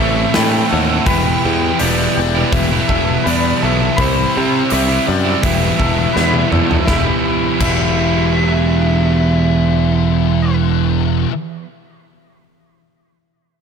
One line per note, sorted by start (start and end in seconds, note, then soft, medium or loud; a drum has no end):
0.00 0.25 A1 medium
0.00 0.33 A2 medium
0.00 0.18 E3 medium
0.00 0.34 E3 medium
0.00 0.14 A3 medium
0.00 0.34 A3 medium
0.00 0.34 C4 medium
0.00 0.35 E4 medium
0.00 0.33 A4 medium
0.00 0.37 E5 medium
0.15 0.35 E3 medium
0.15 0.36 A3 medium
0.33 1.04 A2 medium
0.33 0.68 A2 loud
0.33 0.70 E3 medium
0.33 0.71 E3 loud
0.33 0.70 A3 medium
0.33 0.71 C4 medium
0.33 0.72 E4 medium
0.33 0.69 B4 medium
0.33 0.71 G5 medium
0.33 snare loud
0.33 open hi-hat medium
0.37 0.63 A2 medium
0.37 0.71 A3 loud
0.69 0.98 D#2 medium
0.69 1.04 A2 medium
0.69 1.05 E3 medium
0.69 0.91 E3 medium
0.69 0.90 A3 medium
0.69 0.87 A3 medium
0.69 0.89 C4 medium
0.69 0.87 E4 medium
0.69 1.06 A4 medium
0.69 1.05 F#5 medium
0.88 1.10 E3 medium
0.88 1.04 A3 medium
0.88 1.06 A3 medium
0.88 1.05 C4 medium
0.88 1.06 E4 medium
1.05 1.33 E1 medium
1.05 1.44 E2 medium
1.05 1.46 B2 loud
1.05 1.44 E3 medium
1.05 1.45 G3 medium
1.05 1.46 B3 medium
1.05 1.46 E4 loud
1.05 2.91 B4 medium
1.05 1.81 G5 medium
1.05 kick loud
1.05 open hi-hat soft
1.11 1.48 E3 medium
1.44 1.79 E2 medium
1.44 1.71 E2 medium
1.44 1.80 B2 medium
1.44 1.79 E3 medium
1.44 1.80 G3 medium
1.44 1.81 B3 medium
1.44 1.81 E4 medium
1.49 1.83 E3 medium
1.79 2.07 E1 medium
1.79 2.15 E2 loud
1.79 2.00 B2 medium
1.79 2.18 E3 medium
1.79 2.00 G3 loud
1.79 1.99 B3 medium
1.79 1.97 E4 loud
1.79 2.16 G4 medium
1.79 2.53 D5 medium
1.79 open hi-hat medium
1.83 1.99 E3 medium
1.98 2.17 B2 medium
1.98 2.19 E3 medium
1.98 2.18 G3 medium
1.98 2.19 B3 medium
1.98 2.19 E4 medium
2.16 2.43 E1 medium
2.16 2.70 E2 medium
2.16 2.37 B2 medium
2.16 2.35 E3 medium
2.16 2.91 G4 medium
2.16 muted overdriven electric guitar stroke soft
2.35 2.73 B2 medium
2.35 2.70 E3 medium
2.35 2.72 G3 soft
2.35 2.71 B3 medium
2.35 2.71 E4 medium
2.53 2.79 E1 medium
2.53 3.27 E5 loud
2.53 kick loud
2.53 open hi-hat soft
2.71 2.90 B2 medium
2.71 2.91 E3 medium
2.71 2.89 G3 medium
2.71 2.90 B3 medium
2.71 2.90 E4 medium
2.88 3.16 E1 medium
2.88 3.24 E2 medium
2.88 3.09 B2 medium
2.88 3.25 E3 medium
2.88 3.25 G3 medium
2.88 3.26 B3 medium
2.88 3.27 E4 medium
2.88 3.23 A4 medium
2.88 kick medium
2.92 3.07 E3 medium
3.07 3.26 B2 medium
3.07 3.27 E3 medium
3.24 3.60 E2 medium
3.24 3.52 E2 medium
3.24 3.62 B2 loud
3.24 3.61 E3 medium
3.24 3.61 G3 medium
3.24 3.62 B3 medium
3.24 3.63 E4 medium
3.24 3.60 B4 medium
3.24 open hi-hat soft
3.28 3.64 E3 loud
3.28 3.63 D5 medium
3.61 3.89 B1 medium
3.61 3.95 E2 medium
3.61 3.82 B2 medium
3.61 4.00 E3 medium
3.61 3.83 G3 medium
3.61 3.82 B3 medium
3.61 3.80 E4 medium
3.61 3.97 A4 medium
3.61 3.99 E5 medium
3.65 3.80 E3 medium
3.80 3.97 B2 medium
3.80 4.00 E3 medium
3.80 4.00 G3 medium
3.80 4.01 B3 medium
3.80 4.01 E4 medium
3.97 4.24 C2 medium
3.97 4.35 C3 medium
3.97 4.34 C3 medium
3.97 4.35 G3 medium
3.97 4.73 C5 medium
3.97 4.69 B5 medium
3.97 kick loud
3.97 open hi-hat medium
4.01 4.37 G3 medium
4.01 4.35 C4 loud
4.01 4.39 C4 loud
4.01 4.37 E4 loud
4.35 4.71 C3 medium
4.35 4.62 C3 medium
4.35 4.70 G3 medium
4.35 4.72 G3 medium
4.35 4.72 C4 medium
4.35 4.72 E4 medium
4.40 4.73 C4 medium
4.70 4.98 C2 medium
4.70 5.06 C3 medium
4.70 5.05 C3 medium
4.70 4.90 G3 medium
4.70 4.91 G3 medium
4.70 4.89 C4 medium
4.70 4.87 E4 loud
4.70 5.04 G4 medium
4.70 5.08 E5 medium
4.70 open hi-hat medium
4.74 4.88 C4 medium
4.88 5.06 G3 medium
4.88 5.07 G3 medium
4.88 5.09 C4 medium
4.88 5.07 C4 medium
4.88 5.07 E4 medium
5.06 5.34 F#2 medium
5.06 5.40 C3 medium
5.06 5.27 G3 medium
5.06 5.78 G4 medium
5.06 5.43 D5 medium
5.06 muted overdriven electric guitar stroke soft
5.10 5.25 C4 medium
5.25 5.41 G3 soft
5.25 5.42 G3 medium
5.25 5.41 C4 medium
5.25 5.40 E4 medium
5.42 5.70 E1 medium
5.42 5.80 E2 medium
5.42 5.64 B2 loud
5.42 5.76 E3 medium
5.42 5.62 G3 medium
5.42 5.61 B3 loud
5.42 5.59 E4 loud
5.42 6.48 E5 medium
5.42 kick loud
5.42 open hi-hat medium
5.46 5.62 E3 loud
5.61 5.83 E3 medium
5.61 5.77 G3 medium
5.61 5.77 B3 medium
5.61 5.78 E4 medium
5.65 5.81 B2 medium
5.78 6.06 E1 medium
5.78 6.16 E2 medium
5.78 6.14 E3 medium
5.78 6.15 G3 medium
5.78 6.15 B3 medium
5.78 6.16 E4 medium
5.78 6.13 A4 medium
5.78 kick medium
5.82 6.01 B2 medium
5.82 5.99 E3 medium
6.00 6.17 B2 medium
6.00 6.19 E3 medium
6.13 6.43 E2 medium
6.13 6.49 E3 medium
6.13 6.51 G3 medium
6.13 6.51 B3 medium
6.13 6.52 E4 medium
6.13 6.50 B4 medium
6.13 snare medium
6.18 6.53 E2 medium
6.18 6.54 B2 loud
6.18 6.56 E3 loud
6.34 high tom medium
6.50 6.78 E2 medium
6.50 6.87 E2 medium
6.50 6.85 E3 medium
6.50 6.71 G3 medium
6.50 6.71 B3 medium
6.50 6.69 E4 medium
6.50 6.87 A4 medium
6.50 mid tom medium
6.56 6.74 B2 medium
6.56 6.71 E3 medium
6.70 6.87 E3 medium
6.70 6.87 G3 medium
6.70 6.87 B3 medium
6.70 6.86 E4 medium
6.70 floor tom medium
6.75 6.88 B2 medium
6.85 7.08 E1 medium
6.85 7.58 E3 medium
6.85 7.60 B3 loud
6.85 7.59 E4 medium
6.85 7.07 E5 medium
6.85 kick loud
6.85 snare medium
6.90 7.61 E2 medium
6.90 7.63 B2 loud
6.90 7.61 E4 medium
6.90 7.63 G4 medium
6.94 7.64 E3 loud
7.59 11.25 E1 loud
7.59 11.29 E2 medium
7.59 11.28 E3 medium
7.59 11.29 B3 medium
7.59 8.32 E4 medium
7.59 11.29 E4 medium
7.59 10.55 E5 medium
7.59 kick loud
7.59 crash medium
7.63 11.30 B2 medium
7.63 11.31 E3 loud
7.63 11.30 G4 loud